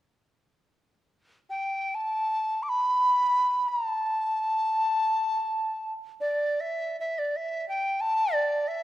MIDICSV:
0, 0, Header, 1, 2, 480
1, 0, Start_track
1, 0, Tempo, 500000
1, 8477, End_track
2, 0, Start_track
2, 0, Title_t, "Dizi"
2, 0, Program_c, 0, 73
2, 1439, Note_on_c, 0, 79, 59
2, 1869, Note_on_c, 0, 81, 76
2, 1884, Note_off_c, 0, 79, 0
2, 2522, Note_on_c, 0, 86, 57
2, 2536, Note_off_c, 0, 81, 0
2, 2582, Note_on_c, 0, 83, 81
2, 2596, Note_off_c, 0, 86, 0
2, 3536, Note_on_c, 0, 82, 71
2, 3550, Note_off_c, 0, 83, 0
2, 3718, Note_off_c, 0, 82, 0
2, 3718, Note_on_c, 0, 81, 71
2, 5687, Note_off_c, 0, 81, 0
2, 5956, Note_on_c, 0, 74, 61
2, 6341, Note_on_c, 0, 76, 68
2, 6355, Note_off_c, 0, 74, 0
2, 6713, Note_off_c, 0, 76, 0
2, 6719, Note_on_c, 0, 76, 61
2, 6898, Note_on_c, 0, 74, 59
2, 6913, Note_off_c, 0, 76, 0
2, 7069, Note_on_c, 0, 76, 72
2, 7083, Note_off_c, 0, 74, 0
2, 7373, Note_off_c, 0, 76, 0
2, 7378, Note_on_c, 0, 79, 78
2, 7685, Note_on_c, 0, 81, 86
2, 7700, Note_off_c, 0, 79, 0
2, 8000, Note_on_c, 0, 74, 77
2, 8014, Note_off_c, 0, 81, 0
2, 8332, Note_on_c, 0, 76, 79
2, 8346, Note_off_c, 0, 74, 0
2, 8477, Note_off_c, 0, 76, 0
2, 8477, End_track
0, 0, End_of_file